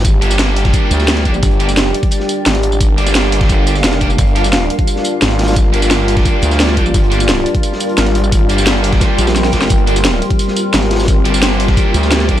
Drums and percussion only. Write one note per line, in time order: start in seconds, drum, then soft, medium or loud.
0.00 closed hi-hat medium
0.05 kick loud
0.05 closed hi-hat loud
0.05 closed hi-hat medium
0.05 tambourine soft
0.22 closed hi-hat medium
0.22 tambourine soft
0.30 snare soft
0.30 closed hi-hat soft
0.30 tambourine medium
0.39 snare loud
0.39 closed hi-hat medium
0.39 closed hi-hat loud
0.39 tambourine medium
0.56 closed hi-hat medium
0.56 open hi-hat medium
0.65 kick loud
0.65 snare medium
0.65 closed hi-hat soft
0.73 kick loud
0.73 closed hi-hat medium
0.73 tambourine soft
0.91 closed hi-hat medium
0.91 tambourine medium
1.00 snare soft
1.00 tambourine soft
1.08 snare loud
1.08 closed hi-hat medium
1.08 tambourine soft
1.17 snare soft
1.17 closed hi-hat soft
1.25 kick medium
1.25 closed hi-hat medium
1.34 tambourine soft
1.43 kick loud
1.43 closed hi-hat medium
1.43 tambourine soft
1.51 closed hi-hat soft
1.60 closed hi-hat medium
1.60 tambourine soft
1.69 snare soft
1.69 closed hi-hat soft
1.69 tambourine medium
1.77 snare loud
1.77 closed hi-hat medium
1.77 closed hi-hat loud
1.77 tambourine medium
1.94 closed hi-hat medium
2.03 kick loud
2.03 closed hi-hat soft
2.11 closed hi-hat medium
2.11 tambourine soft
2.20 snare soft
2.29 closed hi-hat medium
2.29 tambourine medium
2.46 snare loud
2.46 closed hi-hat medium
2.46 closed hi-hat loud
2.46 tambourine soft
2.55 snare medium
2.55 closed hi-hat soft
2.63 closed hi-hat medium
2.72 tambourine soft
2.80 kick loud
2.80 closed hi-hat medium
2.80 tambourine soft
2.98 closed hi-hat medium
2.98 tambourine soft
3.06 snare soft
3.06 closed hi-hat soft
3.06 tambourine medium
3.14 snare loud
3.14 closed hi-hat loud
3.14 tambourine soft
3.32 closed hi-hat medium
3.32 open hi-hat medium
3.41 kick loud
3.41 snare medium
3.41 closed hi-hat soft
3.49 kick loud
3.49 closed hi-hat medium
3.49 tambourine soft
3.67 closed hi-hat medium
3.67 tambourine medium
3.75 snare soft
3.75 tambourine soft
3.84 snare loud
3.84 closed hi-hat medium
3.84 closed hi-hat loud
3.84 tambourine soft
3.93 snare soft
3.93 closed hi-hat soft
4.01 kick medium
4.01 closed hi-hat medium
4.10 tambourine soft
4.18 kick loud
4.18 closed hi-hat medium
4.18 tambourine soft
4.27 closed hi-hat soft
4.36 closed hi-hat medium
4.36 tambourine soft
4.44 snare soft
4.44 closed hi-hat soft
4.44 tambourine medium
4.53 snare loud
4.53 closed hi-hat loud
4.53 closed hi-hat medium
4.53 tambourine medium
4.70 closed hi-hat medium
4.79 kick loud
4.79 closed hi-hat soft
4.87 closed hi-hat medium
4.87 tambourine soft
4.96 snare medium
5.04 closed hi-hat medium
5.04 tambourine medium
5.22 snare loud
5.22 closed hi-hat loud
5.22 closed hi-hat medium
5.22 tambourine soft
5.30 snare medium
5.30 closed hi-hat soft
5.39 snare medium
5.39 closed hi-hat medium
5.43 snare loud
5.43 closed hi-hat medium
5.48 snare medium
5.48 closed hi-hat medium
5.48 tambourine soft
5.52 snare medium
5.52 closed hi-hat medium
5.56 kick loud
5.56 closed hi-hat medium
5.56 tambourine soft
5.73 closed hi-hat medium
5.73 tambourine soft
5.82 snare soft
5.82 closed hi-hat soft
5.82 tambourine medium
5.91 snare loud
5.91 closed hi-hat medium
5.91 tambourine medium
6.08 closed hi-hat medium
6.08 open hi-hat medium
6.17 kick loud
6.17 snare medium
6.17 closed hi-hat soft
6.25 kick loud
6.25 closed hi-hat medium
6.25 tambourine soft
6.42 closed hi-hat medium
6.42 tambourine medium
6.51 snare soft
6.51 tambourine soft
6.60 snare loud
6.60 closed hi-hat medium
6.60 tambourine medium
6.69 snare soft
6.69 closed hi-hat soft
6.77 kick medium
6.77 closed hi-hat medium
6.86 tambourine soft
6.94 kick loud
6.94 closed hi-hat medium
6.94 tambourine soft
7.04 closed hi-hat soft
7.12 closed hi-hat medium
7.12 tambourine soft
7.20 snare soft
7.20 closed hi-hat soft
7.20 tambourine medium
7.28 snare loud
7.28 closed hi-hat medium
7.28 closed hi-hat loud
7.28 tambourine medium
7.46 closed hi-hat medium
7.55 kick loud
7.55 closed hi-hat soft
7.63 closed hi-hat medium
7.63 tambourine soft
7.72 snare soft
7.80 closed hi-hat medium
7.80 tambourine medium
7.89 closed hi-hat soft
7.98 snare loud
7.98 closed hi-hat loud
7.98 closed hi-hat medium
7.98 tambourine medium
8.06 snare soft
8.06 closed hi-hat soft
8.15 closed hi-hat medium
8.24 tambourine soft
8.32 kick loud
8.32 closed hi-hat medium
8.32 tambourine medium
8.49 closed hi-hat medium
8.49 tambourine soft
8.58 snare soft
8.58 closed hi-hat soft
8.58 tambourine medium
8.66 snare loud
8.66 closed hi-hat loud
8.66 closed hi-hat medium
8.66 tambourine medium
8.84 closed hi-hat medium
8.84 open hi-hat medium
8.92 kick loud
8.92 snare medium
8.92 closed hi-hat soft
9.00 kick loud
9.00 snare medium
9.00 closed hi-hat medium
9.00 closed hi-hat loud
9.00 tambourine soft
9.18 closed hi-hat medium
9.18 tambourine medium
9.27 snare loud
9.27 closed hi-hat medium
9.27 tambourine soft
9.36 snare medium
9.36 closed hi-hat medium
9.36 tambourine medium
9.44 snare medium
9.44 closed hi-hat soft
9.44 closed hi-hat medium
9.52 kick medium
9.52 snare medium
9.52 closed hi-hat medium
9.52 tambourine soft
9.62 snare medium
9.62 tambourine soft
9.69 kick loud
9.69 closed hi-hat medium
9.69 closed hi-hat loud
9.69 tambourine medium
9.78 closed hi-hat soft
9.87 closed hi-hat medium
9.87 tambourine soft
9.96 snare soft
9.96 closed hi-hat soft
9.96 tambourine medium
10.04 snare loud
10.04 closed hi-hat medium
10.04 closed hi-hat loud
10.04 tambourine medium
10.22 closed hi-hat medium
10.30 kick loud
10.30 closed hi-hat soft
10.39 closed hi-hat medium
10.39 tambourine medium
10.48 snare soft
10.56 closed hi-hat medium
10.56 tambourine medium
10.73 snare loud
10.73 closed hi-hat medium
10.73 closed hi-hat loud
10.73 tambourine medium
10.82 snare medium
10.82 closed hi-hat soft
10.90 snare loud
10.90 closed hi-hat medium
10.95 snare loud
10.95 closed hi-hat medium
10.99 snare medium
10.99 closed hi-hat medium
10.99 tambourine soft
11.03 snare medium
11.03 closed hi-hat medium
11.08 kick loud
11.08 closed hi-hat medium
11.08 closed hi-hat loud
11.08 tambourine medium
11.25 closed hi-hat medium
11.25 tambourine soft
11.34 snare soft
11.34 closed hi-hat soft
11.34 tambourine medium
11.42 snare loud
11.42 closed hi-hat medium
11.42 closed hi-hat loud
11.42 tambourine medium
11.60 closed hi-hat medium
11.60 open hi-hat medium
11.68 kick loud
11.68 snare medium
11.68 closed hi-hat soft
11.77 kick loud
11.77 closed hi-hat medium
11.77 tambourine soft
11.94 closed hi-hat medium
11.94 tambourine medium
12.03 snare soft
12.03 tambourine soft
12.11 snare loud
12.11 closed hi-hat medium
12.11 closed hi-hat loud
12.11 tambourine medium
12.20 snare soft
12.20 closed hi-hat soft
12.29 kick medium
12.29 closed hi-hat medium